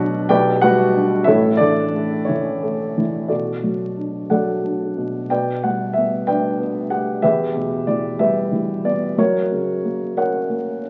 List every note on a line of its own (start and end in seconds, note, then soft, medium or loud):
0.00 0.25 B1 medium
0.00 0.27 B2 medium
0.00 0.28 F#3 medium
0.00 0.29 D4 medium
0.00 0.31 F#4 medium
0.00 0.31 B4 medium
0.00 0.31 D5 medium
0.00 0.32 F#5 loud
0.29 1.23 B1 medium
0.29 1.24 B2 medium
0.29 0.60 G4 medium
0.29 0.60 B4 medium
0.29 0.60 D5 medium
0.29 0.59 G5 loud
0.61 1.26 G3 medium
0.61 1.24 F#4 medium
0.61 1.24 B4 medium
0.61 1.29 F#5 loud
0.95 1.26 D4 medium
1.24 3.26 A1 medium
1.24 3.26 A2 medium
1.24 1.58 E4 medium
1.24 1.58 A4 medium
1.24 1.58 C#5 medium
1.24 1.56 E5 loud
1.57 2.28 E3 soft
1.57 2.24 D4 medium
1.57 2.24 A4 medium
1.57 2.22 D5 loud
1.95 2.62 A3 soft
2.25 3.01 C#4 soft
2.25 3.01 E4 soft
2.25 2.99 C#5 medium
2.29 2.96 E3 medium
2.63 3.29 A3 medium
2.98 3.30 E3 soft
3.28 4.96 B2 soft
3.28 4.26 F#4 soft
3.28 4.26 A4 soft
3.28 4.30 D5 medium
3.64 4.29 F#3 soft
3.97 4.62 D4 soft
4.30 5.27 F#3 soft
4.30 5.26 A4 soft
4.30 5.27 D5 soft
4.30 5.26 F#5 medium
4.63 5.28 D4 soft
4.98 5.29 B2 soft
5.30 7.19 B2 soft
5.30 6.24 B4 soft
5.30 6.24 D5 medium
5.30 5.64 G5 medium
5.63 6.87 G3 soft
5.63 5.97 F#5 medium
5.93 6.58 B3 soft
5.93 6.27 E5 medium
6.27 7.20 D4 soft
6.27 7.19 B4 medium
6.27 7.19 D5 medium
6.27 6.92 G5 medium
6.60 7.21 B3 soft
6.90 7.21 G4 soft
6.90 7.23 F#5 medium
7.22 9.14 E2 medium
7.22 8.15 G4 medium
7.22 8.15 B4 medium
7.22 7.83 E5 medium
7.55 8.81 B2 soft
7.87 8.50 E3 soft
7.87 8.20 D5 medium
8.19 9.15 G3 medium
8.19 9.14 G4 medium
8.19 9.14 B4 medium
8.19 8.87 E5 medium
8.52 9.16 E3 soft
8.85 9.17 B3 soft
8.85 9.19 D5 medium
9.18 10.90 F#2 medium
9.18 10.13 F#4 medium
9.18 10.13 A#4 medium
9.18 10.13 C#5 medium
9.52 10.79 C#3 soft
9.84 10.48 A#3 soft
10.17 10.81 C#4 soft
10.17 10.90 A#4 medium
10.17 10.90 C#5 medium
10.17 10.88 F#5 medium
10.49 10.90 A#3 soft
10.83 10.90 C#4 soft